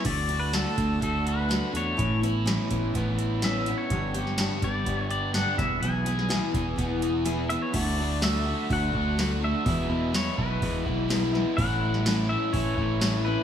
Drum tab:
CC |x---------------|----------------|----------------|----------------|
HH |x-x-x-x-x-x-x-x-|x-x-x-x-x-x-x-x-|x-x-x-x-x-x-x-x-|x-x-x-x-x-x-x-x-|
SD |----o-------o---|----o-------o---|---oo-------o-o-|---oo-----------|
BD |o-----o-o-------|o-----o-o-------|o-----o-o-----o-|------o-o-------|

CC |x---------------|----------------|----------------|
HH |o---o---o---o---|o---o---o---o---|o---o---o---o---|
SD |----o-------o---|----o-------o-o-|---oo-------o---|
BD |o-------o-o-----|o-----o-o-o-----|o-------o-o-----|